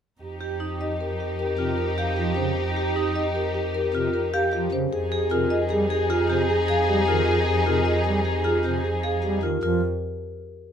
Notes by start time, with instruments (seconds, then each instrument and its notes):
0.21 double bass F2, violin section D#4 G4, french horn G4
0.41 vibraphone G4, french horn G4, marimba G4
0.60 vibraphone D#4, french horn G4
0.81 french horn G4, marimba D#5
1.00 french horn G4, marimba A#4
1.20 marimba G4, french horn G4
1.39 french horn G4, marimba A#4
1.58 pipe organ C3, vibraphone F4, french horn G4
1.78 french horn G4, marimba A#4
1.98 vibraphone G4, french horn G4, marimba F5
2.16 pipe organ F3, marimba G4, french horn G4
2.36 pipe organ C#3, french horn G4, marimba C5
2.57 french horn G4
2.76 marimba G4, french horn G4, vibraphone G4
2.96 vibraphone D#4, french horn G4
3.15 french horn G4, marimba D#5
3.35 french horn G4, marimba A#4
3.54 marimba G4, french horn G4
3.74 french horn G4, marimba A#4
3.94 pipe organ C3, vibraphone F4, french horn G4
4.14 french horn G4, marimba A#4
4.33 french horn G4, vibraphone G4, marimba F5
4.53 pipe organ F3, french horn G4, marimba G4
4.72 pipe organ C#3, marimba C5
4.92 double bass F2, violin section D#4 G#4, french horn G#4, marimba G#4
5.12 marimba G4, french horn G#4, vibraphone G#4
5.31 pipe organ C3, vibraphone F4, french horn G#4, marimba A#4
5.50 french horn G#4, marimba D#5
5.70 pipe organ G3, marimba G#4, french horn G#4
5.90 marimba G4, vibraphone G#4, french horn G#4
6.10 vibraphone F4, marimba G#4, french horn G#4
6.29 pipe organ C3, vibraphone G4, french horn G#4, marimba C5
6.49 french horn G#4, marimba G#4
6.68 french horn G#4, vibraphone G#4, marimba F5
6.88 pipe organ G3, marimba G4, french horn G#4
7.08 pipe organ D#3, vibraphone F4, french horn G#4, marimba A#4
7.28 marimba G#4, french horn G#4
7.47 marimba G4, vibraphone G#4, french horn G#4
7.66 pipe organ C3, vibraphone F4, french horn G#4, marimba A#4
7.85 french horn G#4, marimba D#5
8.05 pipe organ G3, french horn G#4, marimba G#4
8.25 marimba G4, vibraphone G#4, french horn G#4
8.44 vibraphone F4, marimba G#4, french horn G#4
8.64 pipe organ C3, vibraphone G4, french horn G#4, marimba C5
8.84 marimba G#4, french horn G#4
9.03 vibraphone G#4, french horn G#4, marimba F5
9.23 pipe organ G3, marimba G4, french horn G#4
9.43 pipe organ D#3, vibraphone F4, marimba A#4
9.63 double bass F2, pipe organ F3, vibraphone F4, marimba A#4